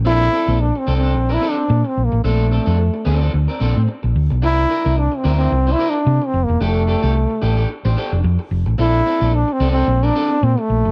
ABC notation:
X:1
M:4/4
L:1/16
Q:"Swing 16ths" 1/4=110
K:Bblyd
V:1 name="Clean electric guitar"
[CDA] z [CDA] [CDA] z2 [CDA] [CDA] z [CDB] [CDA] z4 z | [CDA] z [CDA] [CDA] z2 [CDA] [CDA] z [CDB] [CDA] z4 z | [DEB] z [DEB] [DEB] z2 [DEB] [DEB] z [DEc] [DEB] z4 z | [DGA] z [DGA] [DGA] z2 [DGA] [DGA] z [DGc] [DGA] z4 z |
[CDA] z [CDA] [CDA] z2 [CDA] [CDA] z [CDB] [CDA] z4 z |]
V:2 name="Trombone"
E4 (3D2 C2 C2- (3C2 E2 D2- (3D2 C2 B,2 | A,8 z8 | E4 (3D2 C2 C2- (3C2 E2 D2- (3D2 C2 B,2 | A,8 z8 |
E4 (3D2 C2 C2- C D3 C A,3 |]
V:3 name="Fingered electric bass" clef=bass
B,,,2 z B,,,2 z C,,2 B,,,2 z2 B,, z B,,, A,,, | B,,,3 F,,2 z D,,2 D,, z B,,, A,, z B,,, D,, =B,,, | C,,2 z C,,2 z D,,2 C,,2 z2 C, z F,,, E,,, | F,,,3 C,,2 z A,,,2 z A,,, z F,,, F,, z F,,, A,,, |
B,,,2 z B,,,2 z C,,2 B,,,2 z2 B,, z B,,, ^F,,, |]